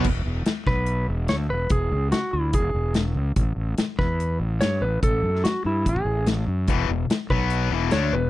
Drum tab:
CC |x---------------|----------------|----------------|----------------|
HH |----x---x---x---|x---x---x---x---|x---x---x---x---|x---x---x---x---|
SD |----o-o-----o---|----o-------o---|----o-o-----o---|---oo-------o---|
BD |o-----o---------|o-------o-------|o-----o---------|o-------oo------|

CC |----------------|
HH |x---x---x---x---|
SD |----o-------o---|
BD |o-----o---------|